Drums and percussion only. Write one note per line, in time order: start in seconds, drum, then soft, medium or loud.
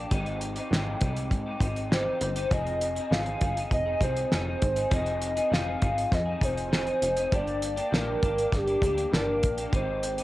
0.11 kick medium
0.11 closed hi-hat medium
0.26 closed hi-hat soft
0.41 closed hi-hat medium
0.56 closed hi-hat soft
0.73 snare loud
1.01 kick medium
1.01 closed hi-hat medium
1.16 closed hi-hat soft
1.31 kick medium
1.31 closed hi-hat medium
1.60 kick medium
1.60 closed hi-hat medium
1.76 closed hi-hat soft
1.92 snare medium
2.21 closed hi-hat medium
2.36 closed hi-hat medium
2.51 kick medium
2.51 closed hi-hat medium
2.67 closed hi-hat soft
2.81 closed hi-hat medium
2.96 closed hi-hat soft
3.13 snare medium
3.26 closed hi-hat soft
3.41 kick medium
3.41 closed hi-hat medium
3.57 closed hi-hat soft
3.71 kick medium
3.71 closed hi-hat medium
4.01 kick medium
4.01 closed hi-hat medium
4.17 closed hi-hat soft
4.32 snare medium
4.62 kick medium
4.62 closed hi-hat medium
4.76 closed hi-hat soft
4.91 kick medium
4.91 closed hi-hat medium
5.06 closed hi-hat soft
5.22 closed hi-hat medium
5.37 closed hi-hat soft
5.54 snare medium
5.82 kick medium
5.82 closed hi-hat medium
5.98 closed hi-hat soft
6.12 kick medium
6.12 snare soft
6.12 closed hi-hat medium
6.41 kick medium
6.41 closed hi-hat medium
6.57 closed hi-hat soft
6.73 snare medium
6.87 closed hi-hat soft
7.02 closed hi-hat medium
7.17 closed hi-hat soft
7.32 kick medium
7.32 closed hi-hat medium
7.47 closed hi-hat soft
7.62 closed hi-hat medium
7.77 closed hi-hat soft
7.94 snare loud
8.23 kick medium
8.23 closed hi-hat medium
8.38 closed hi-hat soft
8.52 kick medium
8.52 snare soft
8.52 closed hi-hat medium
8.67 closed hi-hat soft
8.82 kick medium
8.82 closed hi-hat medium
8.98 closed hi-hat soft
9.13 snare medium
9.43 kick medium
9.43 closed hi-hat medium
9.58 closed hi-hat soft
9.73 kick loud
9.73 closed hi-hat medium
10.03 closed hi-hat medium
10.18 closed hi-hat soft